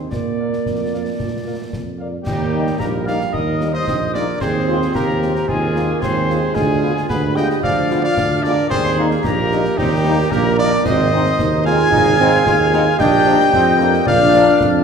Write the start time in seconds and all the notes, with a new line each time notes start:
0.11 A#2 A#3 D5, concert bass drum, snare
0.40 A#4 D5 F5
0.53 snare
0.65 F2, concert bass drum, snare
0.93 A#4 D5 F5
1.19 A#2, concert bass drum, snare
1.46 A#4 D5 F5
1.72 F2, concert bass drum, snare
1.98 A#4 D5 F5
2.24 D#2 G3 A#3 D#4 G4 G5, concert bass drum, snare, crash
2.53 G3 A#3 D#4
2.67 snare
2.78 A#1 G3 A#3 G4 A#4 A#5, concert bass drum, snare
3.05 G3 A#3 D#4 F4 D5 F5 F6, snare
3.21 snare
3.32 D#2 D#4 A#4 D#5 D#6, concert bass drum
3.61 G3 A#3 D#4, snare
3.73 D#4 C5 D#5 D#6
3.87 A#1 C4, concert bass drum, snare
4.13 G3 A#3 D4 D#4 A#4 D5 D6, snare
4.40 D#2 C4 G#4 C5 C6, concert bass drum, snare, crash
4.67 G#3 C4 F4
4.82 snare
4.94 D#2 A#3 G4 A#4 A#5, concert bass drum, snare
5.22 G#3 C4 F4, snare
5.36 snare
5.47 D#2 G#3 C4 F4 G#4 G#5, concert bass drum
5.74 G#3 A#3 C4 F4, snare
6.01 D#2 G#3 C4 G#4 C5 C6, concert bass drum, snare
6.29 G#3 C4 F4, snare
6.55 D2 G#3 F4 G#4 G#5, concert bass drum, snare, crash
6.82 G#3 B3 F4
6.97 snare
7.09 D2 B3 G#4 B4 B5, concert bass drum, snare
7.35 G#3 B3 F4 G4 D#5 G5 G6, snare
7.50 snare
7.61 D2 F3 F4 D5 F5 F6, concert bass drum
7.90 G#3 B3 F4, snare
8.03 F4 D5 F5 F6
8.17 D2 D4, concert bass drum, snare
8.42 G#3 B3 D4 F4 A#4 D5 D6, snare
8.70 D#2 C4 G#4 C5 C6, concert bass drum, snare, crash
8.97 G3 A#3 D#4
9.11 snare
9.23 A#1 A#3 D#4 G4 A#4 A#5, concert bass drum, snare
9.51 G3 A#3 D#4, snare
9.65 snare
9.77 D#2 G3 C4 D#4 G4 G5, concert bass drum, snare
10.05 G3 A#3 D#4
10.31 A#1 A#3 G4 A#4 A#5, concert bass drum, snare
10.57 G3 A#3 D4 D#4 A#4 D5 D6
10.85 G#1 C4 D#4 C5 D#5 D#6, concert bass drum, snare, crash
11.12 G#3 C4 D#4
11.26 snare
11.39 D#2 D#4, concert bass drum, snare
11.64 G#3 C4 D#4 F4 G#4 F5 G#5 G#6, snare
11.79 snare
11.92 G#1 D#4, concert bass drum
12.20 G#3 C4 D#4, snare
12.45 D#2 F4, concert bass drum, snare
12.72 G#3 C4 D#4, snare
12.98 A#1 D4 G4 D#5 G5 G6, concert bass drum, snare, crash
13.27 F3 A#3 D4
13.40 snare
13.53 F2 C4, concert bass drum, snare
13.79 F3 A#3 D4, snare
13.94 snare
14.06 A#1 D4 F4 D5 F5 F6, concert bass drum
14.33 F3 A#3 D4, snare
14.60 F2, concert bass drum, snare